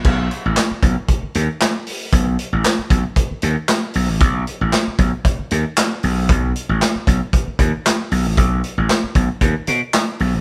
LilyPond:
<<
  \new Staff \with { instrumentName = "Slap bass" } { \clef bass \time 4/4 \key b \mixolydian \tempo 4 = 115 b,,8 r16 a,,16 r8 b,,16 r8. dis,16 r4 r16 | b,,8 r16 a,,16 r8 b,,16 r8. dis,16 r8. b,,16 a,,16 | b,,8 r16 a,,16 r8 b,,16 r8. dis,16 r8. b,,8 | b,,8 r16 a,,16 r8 b,,16 r8. dis,16 r8. b,,16 a,,16 |
b,,8 r16 a,,16 r8 b,,16 r16 dis,16 r16 b,16 r8. b,,16 a,,16 | }
  \new DrumStaff \with { instrumentName = "Drums" } \drummode { \time 4/4 <cymc bd>8 hh8 <hc hh sn>8 <hh bd>8 <hh bd>8 hh8 <hc hh sn>8 hho8 | <hh bd>8 hh8 <hc hh sn>8 <hh bd>8 <hh bd>8 hh8 <hc hh sn>8 hho8 | <hh bd>8 hh8 <hc hh sn>8 <hh bd>8 <hh bd>8 hh8 <hc hh sn>8 hho8 | <hh bd>8 hh8 <hc hh sn>8 <hh bd>8 <hh bd>8 <hh bd>8 <hc hh sn>8 hho8 |
<hh bd>8 hh8 <hc hh sn>8 <hh bd>8 <hh bd>8 hh8 <hc hh sn>8 hho8 | }
>>